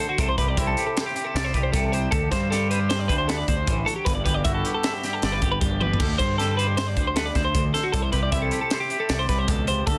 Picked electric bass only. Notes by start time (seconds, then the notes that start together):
0.19 C2
0.38 C2
0.58 C2
1.35 C2
1.54 C2
1.73 C2
2.12 D2
2.32 G2
3.10 D2
3.48 D2
3.68 A1
4.06 G1
4.26 G1
4.45 G1
5.23 G1
5.43 G1
5.62 G1
6.00 D2
6.20 G2
6.97 D2
7.36 D2
7.55 D2
7.94 C2
8.13 C2
8.33 C2
9.10 C2
9.29 C2
9.48 C#2
9.87 D2